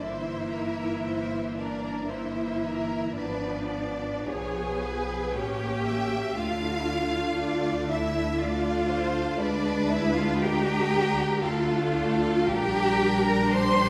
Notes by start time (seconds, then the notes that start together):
0.00 G1 E3 A#3 E4 C5 E5
0.51 A#4
1.05 C5
1.56 D4 A#4 D5
2.08 E3 A#3 E4 C5 E5
2.62 A#4
3.15 G#1 F3 B3 D4 B4 D5
3.71 D5
4.27 B1 F3 B3 G#4 C#5 G#5
4.81 B4
5.33 A1 A#3 C#4 G4 C#5 G5
5.85 E5
6.36 D2 A3 D4 F4 F5
7.40 D5
7.91 E4 E5
8.40 A3 D4 F4 D5 F5
8.90 C5
9.40 D2 G#3 D4 B4 D5
9.90 E4 E5
10.15 F4 F5
10.40 G4 A#4 G5
11.43 D2 A3 D4 F4 A4 F5
11.95 A4
12.46 A#1 G3 D4 G4 A#4 G5
13.25 A#4 A#5
13.51 G4 C5 C6